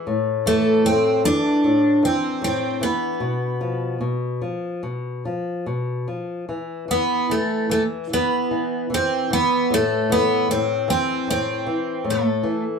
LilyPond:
<<
  \new Staff \with { instrumentName = "Twelve-string acoustic guitar" } { \time 4/4 \key a \minor \tempo 4 = 76 r8 a8 c'8 d'4 c'8 c'8 b8~ | b4 r2. | r8 b8 a8 a8 b4 c'8 b8 | a8 b8 c'8 c'8 c'4 a8. r16 | }
  \new Staff \with { instrumentName = "Nylon-string guitar" } { \clef bass \time 4/4 \key a \minor a,8 e8 a,8 e8 a,8 e8 a,8 e8 | b,8 f8 b,8 f8 b,8 f8 b,8 f8 | e8 e8 e8 e8 e8 e8 e8 e8 | a,8 e8 a,8 e8 a,8 e8 a,8 e8 | }
>>